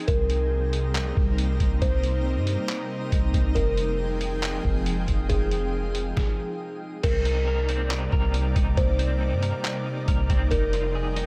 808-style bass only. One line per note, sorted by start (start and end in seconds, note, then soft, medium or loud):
0.08 1.13 C2 loud
1.17 1.58 C2 loud
1.60 1.81 C2 loud
1.82 2.38 C2 loud
2.36 2.57 G2 loud
3.12 3.33 C2 loud
3.34 3.55 C2 loud
3.56 4.60 F1 loud
4.65 5.06 F1 loud
5.08 5.29 F1 loud
5.30 6.13 F1 loud
7.04 8.08 C2 loud
8.12 8.54 C2 loud
8.56 8.77 C2 loud
8.77 9.33 C2 loud
9.32 9.52 G2 loud
10.08 10.29 C2 loud
10.30 10.50 C2 loud
10.51 11.26 F1 loud